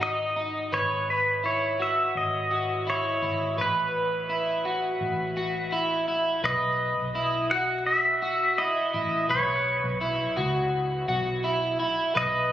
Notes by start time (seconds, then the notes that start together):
Already playing: G#1
0.01 D#4 D#5
0.36 D#4
0.72 G#1 B4 C#5
1.10 B4
1.44 E4 C#5
1.79 F#4 E5
2.15 G#1 D#5
2.51 F#4
2.87 E4 C#5
3.22 G#1 E4
3.58 A1 B4
4.29 E4
4.65 F#4
5.01 A1
5.37 F#4
5.72 E4
6.08 E4
6.44 B1 B4 D#5
6.97 B1
7.15 E4
7.51 F#4 F#5
7.86 E5
8.22 F#4
8.58 E4 D#5
8.94 A1 E4
9.29 B1 B4 C#5
9.84 B1
10.01 E4
10.37 C#2 F#4
11.08 B1 F#4
11.44 E4
11.79 E4
12.15 B1 B4 D#5